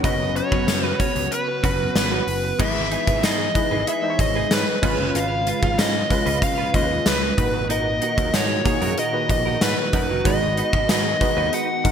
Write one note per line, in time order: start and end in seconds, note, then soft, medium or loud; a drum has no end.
0.00 0.40 F#1 loud
0.00 2.56 C#3 medium
0.00 2.55 F#3 medium
0.00 0.24 F#3 medium
0.00 0.25 B3 medium
0.00 0.20 C#4 medium
0.00 0.25 C#4 medium
0.00 0.25 B4 medium
0.00 closed hi-hat medium
0.04 2.57 B3 medium
0.04 0.20 F#4 medium
0.04 2.57 F#4 medium
0.04 0.19 B4 medium
0.04 0.36 D#5 loud
0.04 kick loud
0.20 muted clean electric guitar stroke medium
0.35 0.46 F#3 medium
0.35 0.46 B3 medium
0.35 0.47 C#4 medium
0.35 0.47 B4 medium
0.35 0.87 C#5 loud
0.35 muted clean electric guitar stroke soft
0.35 closed hi-hat medium
0.51 0.64 F#1 medium
0.51 1.35 F#3 medium
0.51 1.35 B3 medium
0.51 1.35 C#4 medium
0.51 0.65 C#4 medium
0.51 0.65 F#4 medium
0.51 0.64 B4 medium
0.51 1.35 B4 medium
0.51 kick loud
0.67 0.91 F#2 loud
0.67 snare loud
0.67 closed hi-hat medium
0.67 tambourine medium
0.84 0.98 C#4 medium
0.84 0.99 F#4 medium
0.84 1.00 B4 medium
0.84 0.99 B4 loud
0.99 1.12 C#4 medium
0.99 1.12 F#4 medium
0.99 1.13 B4 medium
0.99 1.33 C#5 loud
0.99 kick medium
0.99 closed hi-hat medium
1.15 1.28 C#2 medium
1.15 muted clean electric guitar stroke medium
1.15 closed hi-hat medium
1.31 1.96 B4 medium
1.31 muted clean electric guitar stroke soft
1.31 closed hi-hat medium
1.47 muted clean electric guitar stroke medium
1.63 1.88 F#1 medium
1.63 1.79 C#4 medium
1.63 1.79 F#4 medium
1.63 1.78 B4 medium
1.63 kick medium
1.63 closed hi-hat medium
1.79 1.93 C#4 medium
1.79 1.92 F#4 medium
1.79 1.92 B4 medium
1.95 2.19 G#1 loud
1.95 2.62 B4 medium
1.95 snare loud
1.95 closed hi-hat medium
1.95 tambourine medium
2.11 2.27 C#4 medium
2.11 2.27 F#4 medium
2.11 2.27 B4 medium
2.27 2.51 F#1 medium
2.27 muted clean electric guitar stroke soft
2.27 open hi-hat medium
2.44 muted clean electric guitar stroke soft
2.59 2.95 G#1 loud
2.59 4.81 E3 medium
2.59 3.21 G#3 medium
2.59 7.34 G#3 medium
2.59 3.22 B3 medium
2.59 2.75 D#4 medium
2.59 3.22 E4 medium
2.59 4.81 G#4 medium
2.59 2.76 G#4 medium
2.59 3.22 B4 medium
2.59 2.76 B4 medium
2.59 3.24 E5 loud
2.59 kick loud
2.59 crash loud
2.91 3.04 D#4 medium
2.91 3.04 G#4 medium
2.91 3.05 B4 medium
2.91 closed hi-hat medium
3.07 3.19 G#1 loud
3.07 3.21 D#4 soft
3.07 3.20 G#4 medium
3.07 3.20 B4 medium
3.07 kick loud
3.07 closed hi-hat medium
3.23 3.47 G#2 loud
3.23 3.39 D#4 medium
3.23 3.39 G#4 loud
3.23 3.38 B4 medium
3.23 3.88 D#5 medium
3.23 snare loud
3.23 closed hi-hat medium
3.23 tambourine medium
3.39 muted clean electric guitar stroke soft
3.54 3.86 G#3 medium
3.54 3.86 D#4 medium
3.54 3.86 E4 medium
3.54 3.86 B4 medium
3.54 muted clean electric guitar stroke soft
3.54 kick medium
3.54 closed hi-hat medium
3.71 3.83 G#1 medium
3.71 3.84 D#4 soft
3.71 3.84 G#4 medium
3.71 3.84 B4 medium
3.87 4.03 D#4 medium
3.87 4.03 G#4 medium
3.87 4.02 B4 medium
3.87 4.20 E5 medium
3.87 closed hi-hat medium
4.02 4.76 G#3 medium
4.02 4.76 D#4 medium
4.02 4.76 E4 medium
4.02 4.10 C5 medium
4.02 muted clean electric guitar stroke soft
4.10 4.79 C#5 medium
4.19 4.43 G#1 medium
4.19 4.53 D#5 medium
4.19 muted clean electric guitar stroke soft
4.19 kick loud
4.19 closed hi-hat medium
4.35 4.48 D#4 medium
4.35 4.48 G#4 medium
4.35 4.48 B4 medium
4.51 4.63 G#2 loud
4.51 5.17 B4 medium
4.51 muted clean electric guitar stroke soft
4.51 snare loud
4.51 closed hi-hat medium
4.51 tambourine medium
4.67 muted clean electric guitar stroke medium
4.82 4.95 G#1 loud
4.82 7.35 C#3 medium
4.82 5.84 G#3 medium
4.82 5.85 C#4 medium
4.82 4.99 C#4 medium
4.82 7.35 F4 medium
4.82 5.85 F4 medium
4.82 4.98 F4 medium
4.82 5.85 B4 medium
4.82 4.97 B4 medium
4.82 kick loud
4.82 crash medium
4.98 5.11 F#1 medium
4.98 5.12 C#4 medium
4.98 5.12 F4 medium
4.98 5.11 B4 medium
5.14 5.51 G#1 loud
5.14 5.30 C#4 medium
5.14 5.31 F4 medium
5.14 5.31 B4 medium
5.14 5.80 F5 loud
5.14 closed hi-hat medium
5.46 5.59 C#4 medium
5.46 5.59 F4 medium
5.46 5.60 B4 medium
5.46 closed hi-hat medium
5.62 5.75 G#1 medium
5.62 5.76 C#4 medium
5.62 5.75 F4 medium
5.62 5.75 B4 medium
5.62 kick medium
5.78 6.02 G#2 loud
5.78 5.94 C#4 loud
5.78 5.94 F4 loud
5.78 5.93 B4 loud
5.78 6.43 D#5 medium
5.78 snare loud
5.78 closed hi-hat medium
5.78 tambourine medium
5.94 muted clean electric guitar stroke soft
6.10 6.52 G#3 medium
6.10 6.52 C#4 medium
6.10 6.52 F4 medium
6.10 6.52 B4 medium
6.10 muted clean electric guitar stroke soft
6.10 kick medium
6.10 closed hi-hat medium
6.26 6.38 C#2 medium
6.26 6.40 C#4 medium
6.26 6.39 F4 medium
6.26 6.39 B4 medium
6.26 closed hi-hat medium
6.42 6.75 F5 loud
6.42 muted clean electric guitar stroke soft
6.42 kick medium
6.42 closed hi-hat medium
6.58 6.73 C#4 medium
6.58 6.74 F4 medium
6.58 6.74 B4 medium
6.74 6.98 D#2 medium
6.74 7.37 G#3 medium
6.74 7.37 C#4 medium
6.74 7.37 F4 medium
6.74 7.37 B4 medium
6.74 7.08 D#5 medium
6.74 muted clean electric guitar stroke soft
6.74 kick medium
6.74 closed hi-hat medium
6.90 muted clean electric guitar stroke medium
7.06 7.30 C#2 medium
7.06 7.67 B4 medium
7.06 muted clean electric guitar stroke soft
7.06 snare loud
7.06 closed hi-hat medium
7.06 tambourine medium
7.22 muted clean electric guitar stroke soft
7.37 7.98 G#1 medium
7.37 8.40 A#2 medium
7.37 10.22 A#2 medium
7.37 11.92 D#3 medium
7.37 8.40 D#4 medium
7.37 8.40 F#4 medium
7.37 11.92 F#4 medium
7.37 8.40 B4 medium
7.37 kick loud
7.37 closed hi-hat medium
7.54 muted clean electric guitar stroke soft
7.69 7.86 D#4 medium
7.69 7.86 F#4 loud
7.69 7.87 A#4 medium
7.69 8.35 D#5 loud
7.69 closed hi-hat medium
8.02 8.14 D#4 medium
8.02 8.15 F#4 medium
8.02 8.15 A#4 medium
8.02 closed hi-hat medium
8.18 8.30 D#2 medium
8.18 8.31 D#4 medium
8.18 8.31 F#4 medium
8.18 8.30 A#4 medium
8.18 kick loud
8.18 closed hi-hat medium
8.33 8.58 G#2 loud
8.33 8.49 D#4 medium
8.33 8.50 F#4 medium
8.33 8.49 A#4 medium
8.33 8.99 C#5 medium
8.33 snare loud
8.33 closed hi-hat medium
8.33 tambourine medium
8.50 muted clean electric guitar stroke medium
8.64 8.96 A#3 medium
8.64 8.97 D#4 medium
8.64 8.97 F#4 medium
8.64 8.97 G#4 medium
8.64 muted clean electric guitar stroke soft
8.64 kick loud
8.64 closed hi-hat medium
8.82 8.94 F#2 medium
8.82 8.95 D#4 medium
8.82 8.95 F#4 medium
8.82 8.94 A#4 medium
8.82 closed hi-hat medium
8.98 9.14 D#4 medium
8.98 9.14 F#4 medium
8.98 9.12 A#4 loud
8.98 9.28 D#5 medium
8.98 closed hi-hat medium
9.12 9.86 A#2 medium
9.12 9.86 D#4 medium
9.12 9.86 F#4 medium
9.12 9.87 B4 medium
9.12 muted clean electric guitar stroke medium
9.29 9.54 A#1 medium
9.29 9.60 D#5 loud
9.29 muted clean electric guitar stroke soft
9.29 kick medium
9.29 closed hi-hat medium
9.46 9.59 D#4 medium
9.46 9.58 F#4 medium
9.46 9.58 A#4 medium
9.61 9.74 G#2 loud
9.61 10.28 B4 loud
9.61 snare loud
9.61 closed hi-hat medium
9.61 tambourine medium
9.78 muted clean electric guitar stroke soft
9.93 10.05 F#2 medium
9.93 10.09 D#4 medium
9.93 10.09 F#4 medium
9.93 10.08 A#4 medium
9.93 kick medium
9.93 closed hi-hat medium
10.09 10.21 F#1 medium
10.09 10.23 D#4 medium
10.09 10.22 F#4 medium
10.09 10.22 A#4 medium
10.24 10.61 G#1 loud
10.24 10.87 G#3 medium
10.24 11.92 G#3 medium
10.24 11.92 B3 medium
10.24 10.87 D#4 medium
10.24 10.41 D#4 medium
10.24 10.88 F#4 medium
10.24 10.42 F#4 medium
10.24 10.88 B4 medium
10.24 10.42 B4 loud
10.24 10.89 D#5 loud
10.24 kick loud
10.24 closed hi-hat medium
10.57 10.70 D#4 medium
10.57 10.70 F#4 medium
10.57 10.70 B4 medium
10.57 closed hi-hat medium
10.73 10.85 G#1 loud
10.73 10.86 D#4 soft
10.73 10.86 F#4 medium
10.73 10.86 B4 medium
10.73 kick loud
10.89 11.13 G#2 loud
10.89 11.05 D#4 medium
10.89 11.05 F#4 medium
10.89 11.04 B4 loud
10.89 11.55 D#5 medium
10.89 snare loud
10.89 closed hi-hat medium
10.89 tambourine medium
11.05 muted clean electric guitar stroke soft
11.20 11.62 G#3 medium
11.20 11.63 D#4 medium
11.20 11.63 F#4 medium
11.20 11.63 B4 medium
11.20 muted clean electric guitar stroke soft
11.20 kick medium
11.20 closed hi-hat medium
11.37 11.49 D#2 medium
11.37 11.50 D#4 medium
11.37 11.50 F#4 medium
11.37 11.49 B4 medium
11.53 11.69 D#4 medium
11.53 11.69 F#4 medium
11.53 11.67 B4 loud
11.53 11.92 F#5 loud
11.53 closed hi-hat medium
11.69 muted clean electric guitar stroke medium
11.84 11.92 G#1 medium
11.84 11.92 G#3 medium
11.84 11.92 D#4 medium
11.84 11.92 F#4 medium
11.84 11.92 A#4 medium
11.84 muted clean electric guitar stroke soft
11.84 kick medium
11.84 closed hi-hat medium